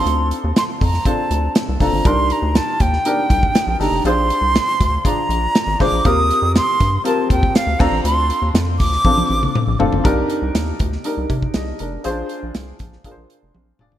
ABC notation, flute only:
X:1
M:4/4
L:1/8
Q:1/4=120
K:Cdor
V:1 name="Flute"
c' z c' b a2 z b | c' b a g4 b | c'4 b3 d' | e'2 c'2 a g f b |
c'2 z d'4 z | z8 | z8 |]